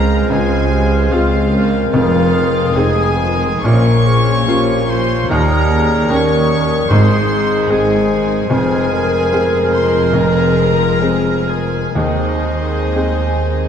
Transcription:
Already playing: C#2 C#3 G#3 C4 F4 G#4 A#4 C5 A#5 F6
0.28 C#2 C#3 F4 G#4 G#5
0.70 C#3 G#3 C4 F4 G4
1.09 C#2 C4 F4 G#4 F5
1.13 F4 G#4
1.49 C#3 G#3 C4 F4 A#4
1.91 F1 F2 F4 F5 D#6
2.32 D#3 G#3 C4 F4
2.73 F1 F2 C4 D#4 G#4 G#5
3.16 D#3 G#3 C5
3.22 C4 F4
3.63 A#1 A#2 F3 A#3 C#4 F4 A#4 C#5 C#6
4.05 F3 A#3 C#4 F4 G#4
4.45 A#1 A#2 A#3 C#4 F4 G4
4.87 F3 A#3 C#4 F4 C5 C6
5.28 D#2 D#3 G3 G4 A#4 A#5 D#6
5.69 D#3 A#3 C#4 G4 G#4
6.10 D#2 A#3 C#4 G4 A#4 C#5 C#6
6.51 D#3 A#3 C#4 G4
6.89 G#1 G#2 D#3 G#3 C4 G#4 C5 C6
7.30 D#3 G#3 C4 G#4
7.70 G#1 G#2 G#3 C4 G#4 G#5
8.10 D#3 G#3 C4 G#4
8.49 F1 F2 F3 G#3 C4 G#4 C5 G#5 F6
8.93 A#4
9.32 G#3 C4 G#4
9.73 C5 C6
10.13 F1 F2 A#4 A#5
11.01 G#3 C4 G#4
11.48 G#4 A#4 G#5
11.95 D#2 D#3 G#3 C4 D#4 G#4 C5 D#5 D#6
12.95 G#3 C4 G#4 G#5

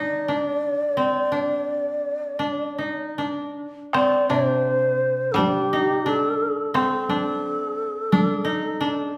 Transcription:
Already playing: D#3 C4 D#4 D5
0.28 D4
0.97 C4
1.32 D4
2.39 D4
2.78 D#4
3.18 D4
3.93 C4 D5, taiko rim
4.29 C3 D4 C5
5.32 G3 D4 A4
5.38 G4, taiko high
5.73 D#4
6.06 D4 A4
6.74 C4 A4, taiko rim
7.09 D4, taiko high
8.12 D4, taiko high
8.45 D#4
8.81 D4

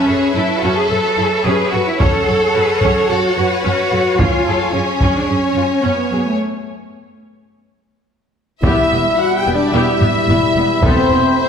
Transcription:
Already playing: C#4 B4 C#5 E5
0.08 F#2 G#4 A4
0.35 F#2 E4 A4
0.63 F#2 C#4 F#4
0.76 G#4
0.90 F#2 A4
1.17 F#2 E4
1.44 F#2 C#4 G#4 B4
1.72 F#2 F#4 A4
1.86 E4
2.00 F#2 C#4 A4 C#5 F#5, taiko
2.27 F#2 A4
2.54 F#2 F#4 B4
2.81 F#2 C#4 C#5, taiko
3.09 F#2 F#4 A4
3.37 F#2 F#4 B4
3.64 F#2 C#4 F#4
3.92 F#2 A4
4.18 F#2 C#4 F4 C#5 G#5, taiko
4.47 F#2 G#4 A4
4.73 F#2 C#4 F4 G#4
5.01 F#2 C#4, taiko
5.14 D4
5.28 F#2 C#4 G#4 C#5
5.55 F#2 F4
5.83 F#2 B3 C#4
6.12 F#2 G#4
6.26 A3
8.62 E1 E2 B2 G3 B3 E4 G4 E5 B5, taiko
8.91 E1 E2 B3
9.17 F#4 F#5
9.36 G4 G5
9.46 E1 E2 B3
9.55 D4 D5
9.72 E1 E2 B3 E4 G4 E5
10.01 E1 E2 B3, taiko low-mid
10.28 E1 E2 B3 E4, taiko low-mid
10.55 E1 E2 B3
10.82 E1 E2 A3 B3 C4 A4 C5, taiko
11.10 E1 E2 B3 C4
11.37 C4 C5

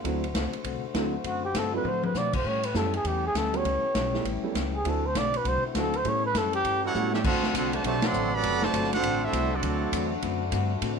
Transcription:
0.04 D2 D3 F#3 A3 C4 D4 E4 F#4 C5, kick, ride
0.24 ride
0.34 C#2 D3 A3 C4 F#4, kick, snare, hi-hat pedal, ride
0.53 ride
0.64 C2 D3 A3 C4 F#4, kick, ride
0.82 muted upright bass stroke
0.94 D2 D3 F#3 A3 C4 D4 E4 F#4, kick, snare, hi-hat pedal, ride
1.24 F#2 D3 A3 C4 F#4, kick, ride
1.45 G4
1.54 G2 D3 A3 C4 F#4, kick, snare, hi-hat pedal, ride
1.58 A4
1.73 F#3 A3 C4 D4 E4 B4
1.84 A2 D3 A3 C4 F#4, high tom
1.88 C5
2.03 B4, high tom
2.14 B2 D3 A3 C4 F#4 D5, snare, hi-hat pedal
2.33 C5, kick, crash
2.44 A2 E3 G3 C#4 E4 G4 C#5, kick
2.63 B4, ride
2.74 F#2 A2 G3 A3 B3 C#4 E4 A4, kick, snare, hi-hat pedal
2.94 G#4, ride
3.04 E2 A2 G3 C#4 E4 G4, kick, ride
3.27 G#4
3.34 D2 A2 G3 C#4 E4 A4, kick, snare, hi-hat pedal, ride
3.53 G3 A3 B3 C#4 F#4 C#5, ride
3.64 C#2 A2 G3 C#4 E4, kick, ride
3.95 B1 A2 G3 C#4 E4, kick, snare, hi-hat pedal, ride
4.14 G3 A3 B3 C#4 E4, snare
4.24 A1 A2 G3 C#4 E4, kick, ride
4.43 G3 A3 B3 C#4 E4
4.54 C#2 A2 G3 C#4 E4, kick, snare, hi-hat pedal, ride
4.76 G#4
4.84 D2 D3 F#3 A3 C4 D4 E4 F#4, kick, ride
4.89 A4
5.06 C5
5.15 B1 D3 A3 C4 F#4 D5, kick, snare, hi-hat pedal, ride
5.34 B4, ride
5.44 C2 D3 A3 C4 F#4, kick, ride
5.48 C5
5.62 muted upright bass stroke
5.66 E4
5.74 D2 D3 F#3 A3 C4 D4 E4 F#4, kick, snare, hi-hat pedal, ride
5.78 A4
5.93 C5, ride
6.04 A2 E3 G3 A3 B3 C#4 E4 A4, kick, ride
6.08 C#5
6.26 B4
6.33 F#2 A2 G3 C#4 E4, kick, snare, hi-hat pedal, ride
6.38 A4
6.53 G4, ride
6.63 G2 A2 G3 C#4 E4, kick, ride
6.84 G3 C#4 E4 F#4 A4 C#5 F#5
6.94 A2 G3 A3 B3 C#4 E4, hi-hat pedal
7.13 G3 C#4 E4 G4 A4 E5, snare
7.23 D2 D3 A3 C4 D4 F#4 A4 C5 F#5, kick, crash
7.43 snare
7.53 C2 D3 A3 C4 D4 F#4 A4 C5 F#5, kick, hi-hat pedal, ride
7.73 C3 F#3 A3 F#4 C5 D5 A5, ride
7.83 B1 C3 D3 F#3 A3 C4 F#4 C5 D5 A5, kick, ride
8.02 F#3 A3 C4 A4 D5 F#5 C6, snare, ride
8.13 A1 D3 A3 C4 F#4, hi-hat pedal
8.33 C3 F#3 B3 A4 D5 F#5 B5
8.43 F#1 D3 A3 C4 F#4, kick, ride
8.62 C3 F#3 A3 F#4 C5 D5 A5, snare
8.73 G1 D3 A3 C4 F#4, kick, hi-hat pedal, ride
8.84 snare
8.92 A3 C4 D4 F#4 A4 C5 F#5, snare, ride
9.03 A1 D3 A3 C4 F#4, kick, ride
9.23 A3 C4 D4 E4 A4 C5 E5
9.32 C2 D3 A3 C4 F#4, kick, hi-hat pedal, ride
9.53 F#3 A3 C4 D4 F#4 A4 D5
9.62 D2 D3 A3 C4 F#4, kick, ride
9.92 E2 D3 A3 C4 F#4, kick, hi-hat pedal, ride
10.22 F#2 D3 A3 C4 F#4, kick, ride
10.51 G2 D3 A3 C4 F#4, kick, hi-hat pedal, ride
10.81 A2 D3 A3 C4 F#4, kick, ride

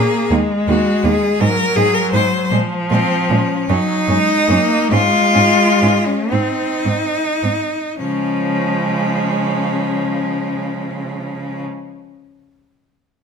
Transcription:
Already playing: A#3 G#4
0.31 D#2 G#3 A#3
0.68 D#2 A#3 F#4
1.04 D#2 A#3 G#4
1.40 G#2 F#3 G#3 A#4
1.76 G#2 G#3 G#4
1.94 A#4
2.12 G#2 G#3 C5
2.51 A#2 F3 G#3
2.90 A#2 G#3 C4
3.29 A#2 G#3 C#4
3.69 F#2 F#3 C#4 D#4
4.08 F#2 G#3 C#4
4.49 F#2 A#3 C#4
4.89 G#2 G#3 C#4 F4
5.33 G#2 C#4
5.81 G#2 C#4
6.06 C#4
6.29 G#2 C4 D#4
6.85 G#2 C4
7.43 G#2 C4
7.99 C#3 F3 G#3 C#4

